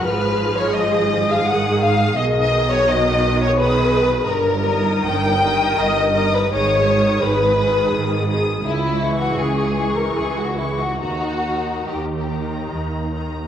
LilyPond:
<<
  \new Staff \with { instrumentName = "Violin section" } { \time 3/4 \key aes \dorian \tempo 4 = 84 f'''4 ees'''2 | ees'''4 ees'''4 ees'''4 | \key dis \phrygian r8 dis'''4 dis'''4 dis'''8 | dis'''8 dis'''4 dis'''4 dis'''8 |
r8 cis'''4 cis'''4 cis'''8 | ais''8 ais''4 ais''4 ais''8 | }
  \new Staff \with { instrumentName = "Violin section" } { \time 3/4 \key aes \dorian ces''8. des''16 ees''8. f''16 ges''8 f''8 | ees''8. des''16 ees''8. des''16 ces''4 | \key dis \phrygian ais'4 g''4 dis''8. b'16 | cis''4 b'4. r8 |
e'8. fis'16 gis'8. ais'16 gis'16 fis'16 e'16 fis'16 | fis'4 g'4 r4 | }
  \new Staff \with { instrumentName = "Viola section" } { \time 3/4 \key aes \dorian << { aes'2. | aes'4 ges'4 aes'4 | \key dis \phrygian r8 ais'4 ais'4 ais'8 | gis'8 gis'4 gis'4 gis'8 |
r8 gis'4 gis'4 gis'8 | dis'8 dis'4 dis'4 dis'8 | } \\ { f2 ees4 | ees2 ees4 | r8 dis4 dis4 dis8 | dis8 dis4 dis4 dis8 |
r8 e4 e4 e8 | dis8 dis4 dis4 dis8 | } >> }
  \new Staff \with { instrumentName = "Cello section" } { \clef bass \time 3/4 \key aes \dorian aes,2. | ces2. | \key dis \phrygian g,4 g,4 g,4 | gis,4 gis,4 gis,4 |
cis,4 cis,4 cis,4 | dis,4 dis,4 dis,4 | }
  \new Staff \with { instrumentName = "Double bass section" } { \clef bass \time 3/4 \key aes \dorian aes,,2. | ces,2. | \key dis \phrygian g,,4 g,,4 g,,4 | gis,,4 gis,,4 gis,,4 |
cis,4 cis,4 cis,4 | dis,4 dis,4 dis,4 | }
>>